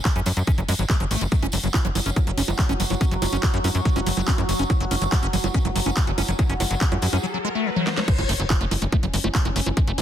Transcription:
0.05 F#3, kick, clap, closed hi-hat
0.16 F#2 C#4, closed hi-hat
0.26 F#2 F#3, open hi-hat, tambourine
0.37 F#2 F#3, closed hi-hat, tambourine
0.47 C#4, kick, closed hi-hat, tambourine
0.58 F#1 F#3, closed hi-hat
0.69 F#2 G#3, open hi-hat, tambourine
0.79 G#1 F#3, closed hi-hat, tambourine
0.90 A3, kick, clap, closed hi-hat
1.00 F#1 F3, closed hi-hat
1.11 G#1 A3, open hi-hat, tambourine
1.21 F#1 F#3, closed hi-hat, tambourine
1.31 F#3 F#4, kick, closed hi-hat, tambourine
1.42 F#1 C#4, closed hi-hat, high bongo
1.52 F#1 F#3, open hi-hat, tambourine
1.63 F#1 F#3, closed hi-hat, tambourine
1.74 C#4, kick, clap, closed hi-hat, high bongo
1.85 F#1 F#3, closed hi-hat
1.95 F#1 F#3, open hi-hat, tambourine, high bongo
2.06 F#1 C#4, closed hi-hat, tambourine
2.16 F#3, kick, closed hi-hat, tambourine, high bongo
2.27 F#1 F#3, closed hi-hat
2.38 F#1 C#4, open hi-hat, tambourine
2.48 F#1 F#3, closed hi-hat, tambourine, high bongo
2.59 F#3, kick, clap, closed hi-hat
2.69 F#1 C#4, closed hi-hat, high bongo
2.80 F#1 F#3, open hi-hat, tambourine
2.90 F#1 F#3, closed hi-hat, tambourine, high bongo
3.01 C#4, kick, closed hi-hat, tambourine
3.11 F#1 F#3, closed hi-hat
3.22 F#1 F#3, open hi-hat, tambourine, high bongo
3.32 F#1 C#4, closed hi-hat, tambourine
3.43 F#3, kick, clap, closed hi-hat, tambourine, high bongo
3.54 F#2 F#3, closed hi-hat
3.64 F#2 C#4, open hi-hat, tambourine, high bongo
3.74 F#2 F#3, closed hi-hat, tambourine
3.85 F#3, kick, closed hi-hat, tambourine
3.96 F#1 C#4, closed hi-hat, high bongo
4.06 F#1 F#3, open hi-hat, tambourine
4.17 F#1 F#3, closed hi-hat, tambourine, high bongo
4.28 C#4, kick, clap, closed hi-hat
4.38 F#2 F#3, closed hi-hat, high bongo
4.49 F#1 F#3, open hi-hat, tambourine
4.59 F#1 C#4, closed hi-hat, tambourine
4.70 F#3, kick, closed hi-hat, riser, high bongo
4.80 F#1 F#3, closed hi-hat
4.91 F#1 C#4, open hi-hat, tambourine, high bongo
5.02 F#1 F#3, closed hi-hat, tambourine
5.12 F#3, kick, clap, closed hi-hat, tambourine, high bongo
5.23 F#1 C#4, closed hi-hat
5.33 F#1 F#3, open hi-hat, tambourine
5.44 F#1 F#3, closed hi-hat, tambourine, high bongo
5.54 C#4, kick, closed hi-hat, tambourine
5.65 F#1 F#3, closed hi-hat, high bongo
5.76 F#1 F#3, open hi-hat, tambourine
5.86 F#1 C#4, closed hi-hat, tambourine, high bongo
5.96 F#3, kick, clap, closed hi-hat, tambourine
6.07 F#1 F#3, closed hi-hat
6.18 F#1 C#4, open hi-hat, tambourine, high bongo
6.28 F#1 F#3, closed hi-hat, tambourine
6.39 F#3, kick, closed hi-hat, tambourine, high bongo
6.50 F#1 C#4, closed hi-hat
6.60 F#1 F#3, open hi-hat, tambourine, high bongo
6.71 F#1 F#3, closed hi-hat, tambourine
6.81 C#4, kick, clap, closed hi-hat
6.92 F#2 F#3, closed hi-hat, high bongo
7.02 F#2 F#3, open hi-hat, tambourine
7.13 F#2 C#4, closed hi-hat, tambourine, high bongo
7.23 F#3
7.34 F#3
7.45 G#3
7.55 A3
7.66 F3
7.76 F#3, high tom
7.87 F#4, snare
7.97 F#3, snare
8.08 F#3 C#4, kick, closed hi-hat, crash, sub drop
8.19 F#1 G#3, closed hi-hat, high bongo
8.29 F#1 A3, open hi-hat
8.40 F#1 F#3, closed hi-hat
8.50 G#3, kick, clap, closed hi-hat, high bongo
8.61 F#1 A3, closed hi-hat
8.71 F#1 F#3, open hi-hat, high bongo
8.82 F#1 G#3, closed hi-hat
8.92 A3, kick, closed hi-hat, high bongo
9.03 F#1 F#3, closed hi-hat
9.14 F#1 G#3, open hi-hat
9.24 F#1 A3, closed hi-hat, high bongo
9.35 F#3, kick, clap, closed hi-hat
9.45 F#1 G#3, closed hi-hat, high bongo
9.56 F#1 A3, open hi-hat
9.66 F#1 F#3, closed hi-hat, high bongo
9.77 G#3, kick, closed hi-hat
9.87 F#1 A3, closed hi-hat
9.98 F#1 F#3, open hi-hat, high bongo

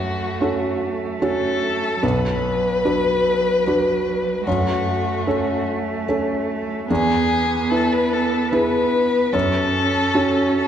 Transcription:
Already playing: F#2 A3 F#4
0.41 C#4 F#4 A4
1.22 C#4 F#4 A4
2.02 B1 F#3 B4
2.85 D4 F#4 B4
3.67 D4 F#4 B4
4.46 F#2 A3 F#4
5.27 C#4 A4
6.08 C#4 A4
6.91 E2 B3 G#4
7.70 E4 A4 B4
7.92 B4
8.12 A4
8.51 E4 G#4 B4
9.33 F#2 C#4 A4
10.14 C#4 F#4 A4
10.57 A4

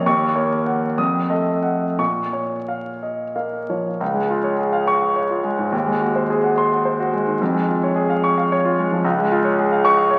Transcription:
0.06 D#2 C#6
0.35 A#3 C#5
0.66 F#5
0.98 F2 D#6
1.30 A3 D#5
1.63 F#5
1.99 A#2 C#6
2.33 C#5
2.68 F5
3.03 D#5
3.36 A#3 F5
3.70 F3 C#5
4.00 C#2
4.14 G#3
4.30 F4
4.44 C#5
4.59 G#4
4.73 F5
4.87 C#6
5.02 F5
5.16 C#5
5.30 F4
5.44 G#3
5.59 G#2
5.72 D#2
5.87 G#3
6.01 F#4
6.16 C5
6.30 G#4
6.44 F#5
6.58 C6
6.73 F#5
6.85 C5
7.00 F#4
7.13 G#3
7.27 D#3
7.42 F2
7.54 G#3
7.68 F4
7.83 C#5
7.96 G#4
8.10 F5
8.24 C#6
8.38 F5
8.52 C#5
8.65 F4
8.79 G#3
8.92 F3
9.04 C#2
9.18 G#3
9.32 F4
9.45 C#5
9.59 G#4
9.72 F5
9.85 C#6
9.98 F5
10.11 C#5

